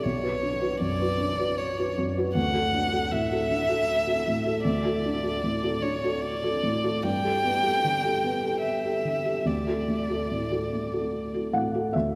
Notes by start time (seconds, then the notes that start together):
0.03 B1 C#5
0.23 F#4 B4
0.43 D4
0.61 F#4 B4
0.80 F#2 D5
1.01 F#4 B4
1.20 D4
1.39 F#4 B4
1.58 C#5
1.78 F#4 B4
1.98 F#2
2.17 F#4 B4
2.35 D2 F#5
2.53 F#4 A4
2.74 D4
2.92 F#4 A4
3.11 A2 E5
3.31 F#4 A4
3.50 D4
3.69 F#4 A4
4.07 F#4 A4
4.27 A2
4.45 F#4 A4
4.64 D2 D5
4.85 F#4 A4
5.06 D4
5.23 F#4 A4
5.44 A2
5.63 F#4 A4
5.82 D4 C#5
6.04 F#4 A4
6.21 D5
6.43 F#4 A4
6.63 A2
6.83 F#4 A4
7.03 G2 G5
7.24 G4 A4
7.44 B3
7.63 G4 A4
7.84 D3
8.04 G4 A4
8.23 B3
8.43 G4 A4
8.62 E5
8.85 G4 A4
9.05 D3
9.25 G4 A4
9.45 D2 D5
9.67 F#4 A4
9.88 A3
10.09 F#4 A4
10.31 A2
10.51 F#4 A4
10.73 A3
10.93 F#4 A4
11.34 F#4 A4
11.53 A2 F#5
11.74 F#4 A4
11.93 D2 E5